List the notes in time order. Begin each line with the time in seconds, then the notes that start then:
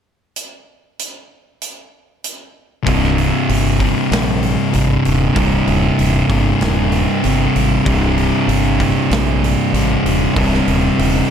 0.36 closed hi-hat
0.99 closed hi-hat
1.62 closed hi-hat
2.24 closed hi-hat
2.83 C1 C2 G2, kick, open hi-hat
2.88 C3
3.04 snare
3.18 open hi-hat
3.49 G1, open hi-hat
3.78 C2 G2 C3, kick, open hi-hat
4.11 A#1, snare, open hi-hat
4.43 open hi-hat
4.70 G#1 C2 G2, open hi-hat
4.75 C3
5.05 D#1, open hi-hat
5.34 C1 C2 G2 C3, kick, open hi-hat
5.67 D#1, open hi-hat
5.99 D#1, open hi-hat
6.28 G1 C2 G2 C3, kick, open hi-hat
6.61 D#1, snare, open hi-hat
6.92 open hi-hat
7.23 G1 C2 G2, open hi-hat
7.27 C3
7.55 G#1, open hi-hat
7.83 C1 C2 G2 C3, kick, open hi-hat
8.18 open hi-hat
8.47 G1, open hi-hat
8.78 C2 G2 C3, kick, open hi-hat
9.10 A#1, snare, open hi-hat
9.44 open hi-hat
9.72 G#1 C2 G2, open hi-hat
9.76 C3
10.04 D#1, open hi-hat
10.33 C1 C2 G2, kick, open hi-hat
10.37 C3
10.54 snare
10.67 D#1, open hi-hat
10.98 D#1, open hi-hat